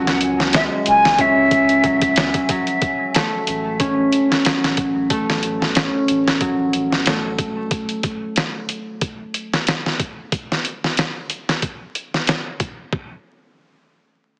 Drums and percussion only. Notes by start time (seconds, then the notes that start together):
0.07 snare
0.21 closed hi-hat
0.40 snare
0.53 snare, closed hi-hat
0.86 closed hi-hat
1.05 snare
1.18 kick, closed hi-hat
1.51 kick, closed hi-hat
1.69 closed hi-hat
1.84 kick, closed hi-hat
2.02 kick, closed hi-hat
2.16 snare, closed hi-hat
2.34 kick, closed hi-hat
2.49 kick, closed hi-hat
2.67 closed hi-hat
2.82 kick, closed hi-hat
3.14 snare, closed hi-hat
3.47 closed hi-hat
3.80 kick, closed hi-hat
4.12 closed hi-hat
4.32 snare
4.45 snare, closed hi-hat
4.64 snare
4.77 kick, closed hi-hat
5.10 kick, closed hi-hat
5.30 snare
5.43 closed hi-hat
5.62 snare
5.75 snare, closed hi-hat
6.08 closed hi-hat
6.28 snare
6.41 kick, closed hi-hat
6.73 closed hi-hat
6.92 snare
7.06 snare, closed hi-hat
7.38 kick, closed hi-hat
7.71 kick, closed hi-hat
7.89 closed hi-hat
8.03 kick, closed hi-hat
8.36 snare, closed hi-hat
8.69 closed hi-hat
9.01 kick, closed hi-hat
9.34 closed hi-hat
9.54 snare
9.67 snare, closed hi-hat
9.86 snare
10.00 kick, closed hi-hat
10.32 kick, closed hi-hat
10.52 snare
10.65 closed hi-hat
10.84 snare
10.97 snare, closed hi-hat
11.30 closed hi-hat
11.49 snare
11.62 kick, closed hi-hat
11.95 closed hi-hat
12.14 snare
12.27 snare, closed hi-hat
12.60 kick, closed hi-hat
12.93 kick